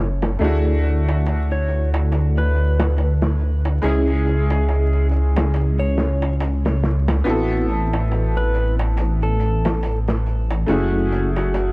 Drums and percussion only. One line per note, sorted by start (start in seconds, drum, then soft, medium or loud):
0.22 snare medium
0.22 darbuka tek medium
0.40 closed hi-hat medium
0.40 darbuka tek medium
0.65 darbuka tek soft
0.83 closed hi-hat medium
1.09 darbuka tek medium
1.26 closed hi-hat medium
1.26 darbuka tek medium
1.51 darbuka tek soft
1.68 closed hi-hat medium
1.94 darbuka tek medium
2.12 closed hi-hat medium
2.12 darbuka tek soft
2.37 darbuka tek soft
2.55 closed hi-hat medium
2.80 snare soft
2.80 darbuka tek medium
2.97 closed hi-hat medium
2.97 darbuka tek medium
3.22 snare soft
3.22 darbuka tek soft
3.39 closed hi-hat medium
3.65 closed hi-hat soft
3.65 darbuka tek medium
3.83 closed hi-hat medium
3.83 darbuka tek medium
4.07 darbuka tek soft
4.26 closed hi-hat medium
4.49 closed hi-hat soft
4.49 darbuka tek medium
4.69 closed hi-hat medium
4.69 darbuka tek medium
4.93 darbuka tek soft
5.11 closed hi-hat medium
5.37 snare soft
5.37 darbuka tek medium
5.54 closed hi-hat medium
5.54 darbuka tek medium
5.79 closed hi-hat soft
5.79 darbuka tek soft
5.97 snare soft
5.97 closed hi-hat medium
6.22 darbuka tek medium
6.40 closed hi-hat medium
6.40 darbuka tek medium
6.65 snare soft
6.65 darbuka tek soft
6.83 snare soft
6.83 closed hi-hat medium
7.08 snare medium
7.08 darbuka tek medium
7.26 closed hi-hat medium
7.26 darbuka tek medium
7.51 darbuka tek soft
7.69 closed hi-hat medium
7.93 darbuka tek medium
8.11 closed hi-hat medium
8.11 darbuka tek medium
8.37 darbuka tek soft
8.54 closed hi-hat medium
8.79 darbuka tek medium
8.97 closed hi-hat medium
8.97 darbuka tek medium
9.22 darbuka tek soft
9.40 closed hi-hat medium
9.65 snare soft
9.65 darbuka tek medium
9.83 closed hi-hat medium
9.83 darbuka tek medium
10.08 snare soft
10.08 darbuka tek soft
10.26 closed hi-hat medium
10.51 closed hi-hat soft
10.51 darbuka tek medium
10.68 closed hi-hat medium
10.68 darbuka tek soft
10.93 darbuka tek soft
11.12 closed hi-hat medium
11.36 closed hi-hat soft
11.36 darbuka tek medium
11.54 closed hi-hat medium
11.54 darbuka tek medium